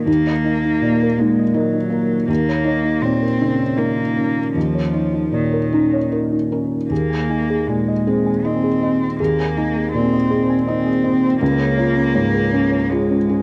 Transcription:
Already playing: felt piano A#3
0.06 felt piano D#2, cello A#3, synth pluck D#4
0.27 synth pluck D#5
0.44 felt piano D#4, synth pluck D#5
0.65 synth pluck D#4
0.82 felt piano A#2, synth pluck D#5
1.03 synth pluck A#4
1.18 cello G#3, felt piano A#3, synth pluck D#4
1.39 synth pluck D#5
1.54 cello F#3, felt piano D#4, synth pluck A#4
1.75 synth pluck D#4
1.90 felt piano A#3, synth pluck A#4
2.28 felt piano D#2, cello A#3, synth pluck D#4
2.49 synth pluck C#5
2.64 felt piano D#4, synth pluck C#5
2.85 synth pluck D#4
3.02 felt piano A#2, cello C4, synth pluck C#5
3.23 synth pluck A#4
3.39 felt piano C#3, synth pluck D#4
3.60 synth pluck C#5
3.77 cello A#3, felt piano D#4, synth pluck A#4
3.98 synth pluck D#4
4.16 felt piano C#4, synth pluck A#4
4.54 felt piano D#2, cello F3, synth pluck D#4
4.75 synth pluck C#5
4.93 felt piano D#4, synth pluck C#5
5.14 synth pluck D#4
5.32 felt piano A#2, cello D#3, synth pluck C#5
5.54 synth pluck A#4
5.72 felt piano C#4, synth pluck D#4
5.93 synth pluck C#5
6.12 felt piano D#4, synth pluck A#4
6.32 synth pluck D#4
6.52 felt piano C#4, synth pluck A#4
6.90 felt piano D#2, cello A#3, synth pluck G#4
7.10 synth pluck G#5
7.29 felt piano D#4, synth pluck G#5
7.50 synth pluck G#4
7.67 felt piano A#2, cello G#3, synth pluck G#5
7.88 synth pluck D#5
8.07 felt piano C4, synth pluck G#4
8.26 synth pluck G#5
8.45 cello C4, felt piano D#4, synth pluck D#5
8.64 synth pluck G#4
8.83 felt piano C4, synth pluck D#5
9.20 felt piano D#2, cello A#3, synth pluck G#4
9.40 synth pluck G#5
9.57 felt piano D#4, synth pluck G#5
9.77 synth pluck G#4
9.93 felt piano A#2, cello C4, synth pluck G#5
10.13 synth pluck D#5
10.31 felt piano C4, synth pluck G#4
10.50 synth pluck G#5
10.65 cello C4, felt piano D#4, synth pluck D#5
10.86 synth pluck G#4
11.04 felt piano C4, synth pluck D#5
11.40 felt piano C#2, cello A#3, synth pluck C#4
11.59 synth pluck C#5
11.78 felt piano F4, synth pluck C#5
11.97 synth pluck C#4
12.15 felt piano G#2, synth pluck C#5
12.35 synth pluck G#4
12.53 synth pluck C#4, felt piano C#4
12.72 synth pluck C#5
12.90 cello G#3, felt piano F4, synth pluck G#4
13.11 synth pluck C#4
13.29 felt piano C#4, synth pluck G#4

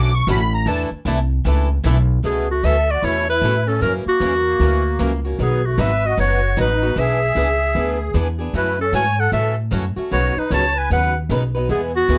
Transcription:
Already playing: upright bass B1, steel-string acoustic guitar D3 F#3 A3 C#4 F#4, accordion D6
0.14 accordion C#6
0.27 upright bass A1, steel-string acoustic guitar D3 F#3 A3 C#4 F#4 A4, accordion B5
0.54 accordion A#5
0.66 upright bass E2, steel-string acoustic guitar E3 A3 D4 E4 A4, accordion A5
0.91 muted upright bass stroke
1.05 upright bass C2, steel-string acoustic guitar E3 A3 D4 E4 A4
1.45 upright bass C#2, steel-string acoustic guitar E3 A3 D4 E4 A4
1.84 upright bass B1, steel-string acoustic guitar E3 A3 D4 E4 A4
2.24 upright bass C#2, steel-string acoustic guitar B2 E3 A3 C#4 E4 A4 B4, accordion B3, clarinet G#4
2.48 accordion A3, clarinet F#4
2.63 upright bass D2, steel-string acoustic guitar B2 E3 A3 C#4 E4 A4 B4, accordion A4, clarinet E5
2.88 accordion F#4, clarinet D5
3.02 upright bass E2, steel-string acoustic guitar B2 E3 A3 C#4 E4 A4 B4, accordion E4, clarinet C#5
3.28 accordion E4, clarinet B4
3.42 upright bass A2, steel-string acoustic guitar B2 E3 A3 C#4 E4 A4 B4
3.66 steel-string acoustic guitar A3 C#4 A4, accordion C#4, clarinet A4
3.81 upright bass F#2, steel-string acoustic guitar C#3 E3 F#3 A#3 C#4 E4 F#4 A#4, accordion C#4, clarinet A#4
4.05 accordion A#3, clarinet F#4, muted upright bass stroke
4.20 upright bass E2, steel-string acoustic guitar C#3 E3 F#3 A#3 C#4 E4 F#4 A#4
4.60 upright bass D2, steel-string acoustic guitar C#3 E3 F#3 A#3 C#4 E4 F#4 A#4
4.99 upright bass C#2, steel-string acoustic guitar C#3 E3 F#3 A#3 C#4 E4 F#4 A#4
5.25 steel-string acoustic guitar A#3 C#4 F#4
5.39 upright bass B1, steel-string acoustic guitar B2 D#3 F#3 B3 D#4 F#4 B4, accordion B3, clarinet G#4
5.66 accordion A3, clarinet F#4
5.78 upright bass G#1, steel-string acoustic guitar B2 D#3 F#3 B3 D#4 F#4 B4, accordion B4, clarinet E5
6.04 accordion F#4, clarinet D#5
6.17 upright bass F#1, steel-string acoustic guitar B2 D#3 F#3 B3 D#4 F#4 B4, accordion F#4, clarinet C#5
6.57 upright bass A1, steel-string acoustic guitar B2 D#3 F#3 B3 D#4 F#4 B4, accordion D#4
6.61 clarinet B4
6.82 steel-string acoustic guitar B3 D#4 F#4
6.96 upright bass B1, steel-string acoustic guitar E3 B3 D4 G#4 B4, accordion G#4, clarinet E5
7.35 upright bass C#2, steel-string acoustic guitar E3 B3 D4 G#4 B4
7.75 upright bass D2, steel-string acoustic guitar E3 B3 D4 G#4 B4
8.14 upright bass E2, steel-string acoustic guitar E3 B3 D4 G#4 B4
8.39 steel-string acoustic guitar B3 D4 G#4
8.53 upright bass F#2, steel-string acoustic guitar C#3 E3 F#3 A3 C#4 E4 F#4 C#5, accordion E4, clarinet B4
8.79 accordion C#4, clarinet A4
8.92 upright bass G#2, steel-string acoustic guitar C#3 E3 F#3 A3 C#4 E4 F#4 C#5, accordion C#5, clarinet G#5
9.19 accordion A4, clarinet F#5
9.32 upright bass A2, steel-string acoustic guitar C#3 E3 F#3 A3 C#4 E4 F#4 C#5, accordion A4, clarinet E5
9.71 upright bass F#2, steel-string acoustic guitar C#3 E3 F#3 A3 C#4 E4 F#4 C#5
9.96 steel-string acoustic guitar A3 C#4 F#4, muted upright bass stroke
10.11 upright bass B1, steel-string acoustic guitar B2 C#3 F#3 B3 D#4 B4, accordion F#4, clarinet C#5
10.36 accordion D#4, clarinet B4, muted upright bass stroke
10.50 upright bass C#2, steel-string acoustic guitar B2 C#3 F#3 B3 D#4 B4, accordion C#5, clarinet A5
10.75 accordion B4, clarinet G#5
10.90 upright bass D#2, steel-string acoustic guitar B2 C#3 F#3 B3 D#4 B4, accordion B4, clarinet F#5
11.29 upright bass B1, steel-string acoustic guitar B2 C#3 F#3 B3 D#4 B4
11.55 steel-string acoustic guitar F#3 B3 D#4 B4
11.69 upright bass E2, steel-string acoustic guitar E3 G#3 B3 E4 G#4, accordion B3, clarinet G#4
11.94 accordion B3, clarinet F#4
12.08 upright bass D2, steel-string acoustic guitar E3 G#3 B3 E4 G#4

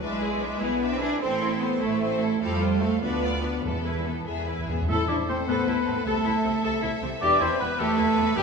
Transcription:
0.00 double bass section B1, cello section G#3, viola section D4, french horn section E4 B4, violin section B4 E5
0.21 viola section E4, violin section G#4 D5
0.41 viola section D4, violin section B4 E5
0.60 double bass section B1, cello section B3, french horn section E4 B4, viola section E4, violin section G#4 D5
0.81 viola section D4, violin section B4 E5
0.92 cello section C4
1.01 cello section D4, viola section E4, violin section G#4 D5
1.20 double bass section A1, cello section C4, viola section C4, french horn section E4 A4, violin section A4 C5
1.41 viola section E4, violin section A4 C5
1.60 cello section B3, viola section C4, violin section A4 C5
1.81 double bass section A1, cello section A3, viola section E4, french horn section E4 A4, violin section A4 C5
2.00 viola section C4, violin section A4 C5
2.21 viola section E4, violin section A4 C5
2.41 double bass section F2, cello section G3, viola section C4, french horn section F4 A4, violin section A4 F5
2.61 viola section F4, violin section C5
2.80 cello section A3, viola section C4, violin section A4 F5
3.02 double bass section D2, cello section B3, viola section D4, french horn section F4 B4, violin section B4 D5
3.22 viola section F4, violin section B4 D5
3.43 viola section D4, violin section B4 D5
3.64 double bass section E2, timpani E2, cello section E3, viola section B3, french horn section A4 B4, violin section A4
3.85 viola section E4, violin section B4
4.06 viola section B3, violin section A4
4.26 double bass section E2, timpani E2, viola section B3, violin section G#4 E5, french horn section G#4 B4
4.36 timpani E2
4.43 timpani E2, violin section B4
4.47 timpani E2, viola section E4, violin section B4
4.58 timpani E2
4.66 timpani E2, viola section B3, violin section G#4 E5
4.74 timpani E2
4.81 timpani E2
4.88 double bass section A1, cello section A2, french horn section E4, violin section A4 C5, viola section A4, oboe E5, flute E6
5.08 double bass section A1, cello section A2, french horn section D4, viola section E4, oboe D5, flute D6
5.28 double bass section A1, cello section A2, french horn section C4, viola section C4, oboe C5, flute C6
5.46 double bass section A1, cello section A2, french horn section B3, viola section A4, oboe B4, flute B5
5.67 double bass section A1, cello section A2, viola section E4
5.86 double bass section A1, cello section A2, viola section C4
6.05 double bass section C2, cello section C3, french horn section A3, viola section A4, oboe A4, violin section E5, flute A5
6.25 double bass section C2, cello section C3, viola section E4
6.44 double bass section C2, cello section C3, viola section C4
6.63 double bass section C2, cello section C3, viola section A4
6.82 double bass section C2, cello section C3, viola section E4
7.02 double bass section C2, cello section C3, viola section C4
7.21 double bass section E1, cello section E2, french horn section D4, viola section G4, violin section B4, oboe D5, flute D6
7.40 double bass section E1, cello section E2, french horn section C4, viola section E4, oboe C5, flute C6
7.59 double bass section E1, cello section E2, viola section B3, french horn section B3, oboe B4, flute B5
7.78 double bass section E1, cello section E2, french horn section A3, viola section G4, oboe A4, flute A5
7.98 double bass section E1, cello section E2, viola section E4
8.17 double bass section E1, cello section E2, viola section B3
8.36 double bass section G1, cello section G2, french horn section G3, viola section G4, oboe G4, violin section E5, flute G5

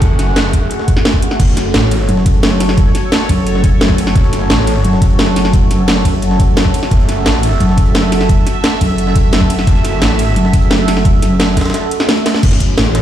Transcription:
Already playing: detuned saw bass F#1, analog synth pad A3 F#4 G#4 F#5
0.02 kick, closed hi-hat
0.19 detuned saw bass F#1, snare, closed hi-hat
0.36 snare, closed hi-hat
0.53 kick, closed hi-hat
0.71 closed hi-hat
0.79 snare
0.88 kick, closed hi-hat
0.97 snare
1.05 snare, closed hi-hat
1.14 kick
1.22 closed hi-hat
1.31 snare
1.40 detuned saw bass F#1, analog synth pad A4 C#5, kick, closed hi-hat, crash
1.48 closed hi-hat
1.57 snare, closed hi-hat, ride
1.74 detuned saw bass A1, snare, closed hi-hat
1.91 closed hi-hat, ride
2.09 wobble bass F#1, closed hi-hat
2.17 snare
2.26 kick, closed hi-hat, ride
2.35 closed hi-hat
2.43 snare, closed hi-hat
2.60 snare, closed hi-hat, ride
2.69 snare
2.78 kick, closed hi-hat
2.95 snare, closed hi-hat, ride
3.12 snare, closed hi-hat
3.29 wobble bass F#1, kick, closed hi-hat, ride
3.47 closed hi-hat
3.55 snare
3.64 kick, closed hi-hat, ride
3.81 wobble bass F#1, snare, closed hi-hat
3.90 kick
3.98 closed hi-hat, ride
4.07 snare
4.16 detuned saw bass F#1, kick, closed hi-hat
4.24 closed hi-hat
4.33 snare, closed hi-hat, ride
4.50 detuned saw bass A1, snare, closed hi-hat
4.67 closed hi-hat, ride
4.84 wobble bass F#1, closed hi-hat
4.93 snare
5.02 kick, closed hi-hat, ride
5.10 closed hi-hat
5.19 snare, closed hi-hat
5.36 snare, closed hi-hat, ride
5.45 snare
5.53 kick, closed hi-hat
5.71 wobble bass F#1, snare, closed hi-hat, ride
5.88 snare, closed hi-hat
6.05 kick, closed hi-hat, ride
6.22 wobble bass F#1, closed hi-hat
6.31 snare
6.40 kick, closed hi-hat, ride
6.57 snare, closed hi-hat
6.65 kick
6.74 closed hi-hat, ride
6.83 snare
6.91 detuned saw bass F#1, analog synth pad E5, kick, closed hi-hat
7.00 closed hi-hat
7.09 snare, closed hi-hat, ride
7.26 detuned saw bass A1, snare, closed hi-hat
7.43 closed hi-hat, ride
7.60 wobble bass F#1, closed hi-hat
7.69 snare
7.78 kick, closed hi-hat, ride
7.86 closed hi-hat
7.95 snare, closed hi-hat
8.12 snare, closed hi-hat, ride
8.21 snare
8.29 kick, closed hi-hat
8.47 snare, closed hi-hat, ride
8.64 snare, closed hi-hat
8.81 wobble bass F#1, kick, closed hi-hat, ride
8.98 closed hi-hat
9.07 snare
9.16 kick, closed hi-hat, ride
9.33 wobble bass F#1, snare, closed hi-hat
9.41 kick
9.50 closed hi-hat, ride
9.59 snare
9.67 detuned saw bass F#1, kick, closed hi-hat
9.76 closed hi-hat
9.85 snare, closed hi-hat, ride
10.02 detuned saw bass A1, snare, closed hi-hat
10.19 closed hi-hat, ride
10.36 wobble bass F#1, closed hi-hat
10.45 snare
10.53 kick, closed hi-hat, ride
10.62 closed hi-hat
10.71 snare, closed hi-hat
10.88 snare, closed hi-hat, ride
10.97 snare
11.05 kick, closed hi-hat
11.22 wobble bass F#1, snare, closed hi-hat, ride
11.40 snare, closed hi-hat
11.57 kick, snare, closed hi-hat, ride
11.61 snare, closed hi-hat
11.66 snare, closed hi-hat
11.70 snare, closed hi-hat
11.74 snare, closed hi-hat
11.91 closed hi-hat, ride
12.00 snare, closed hi-hat
12.09 snare, closed hi-hat
12.17 closed hi-hat
12.26 snare, closed hi-hat, ride
12.35 snare
12.43 detuned saw bass F#1, analog synth pad A3 F#4 G#4 C#5, kick, closed hi-hat, crash, ride
12.52 snare, closed hi-hat
12.60 kick, closed hi-hat, ride
12.78 detuned saw bass A1, snare, closed hi-hat, ride
12.95 snare, closed hi-hat, ride

